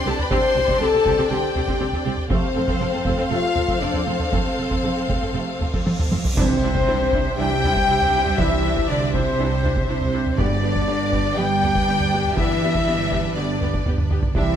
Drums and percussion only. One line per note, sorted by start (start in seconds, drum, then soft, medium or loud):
0.19 taiko low-mid medium
0.31 taiko medium
0.68 taiko medium
1.06 taiko medium
1.55 taiko low-mid medium
1.68 taiko medium
1.93 taiko low-mid soft
2.18 taiko low-mid soft
2.30 taiko loud
2.68 taiko medium
3.05 taiko medium
3.56 taiko low-mid medium
3.68 taiko medium
3.94 taiko low-mid medium
4.20 taiko low-mid soft
4.33 taiko medium
4.71 taiko medium
5.10 taiko medium
5.61 taiko low-mid medium
5.74 taiko medium
5.87 taiko high medium
5.99 taiko low-mid medium
6.12 taiko high medium
6.25 taiko low medium
6.37 taiko loud
6.75 taiko medium
7.13 taiko medium
7.64 taiko low-mid medium
7.76 taiko medium
8.01 taiko low-mid medium
8.26 taiko low-mid medium
8.38 taiko medium
8.76 taiko medium
9.14 taiko medium
9.64 taiko low-mid medium
9.76 taiko medium
10.01 taiko low-mid medium
10.26 taiko low-mid medium
10.38 taiko medium
10.76 taiko medium
11.13 taiko medium
11.63 taiko low-mid medium
11.75 taiko medium
12.00 taiko low-mid medium
12.25 taiko low-mid soft
12.37 taiko loud
12.75 taiko medium
13.12 taiko medium
13.61 taiko low-mid medium
13.74 taiko medium
13.86 taiko low-mid medium
13.98 taiko low-mid medium
14.11 taiko low-mid medium
14.23 taiko low loud
14.35 taiko medium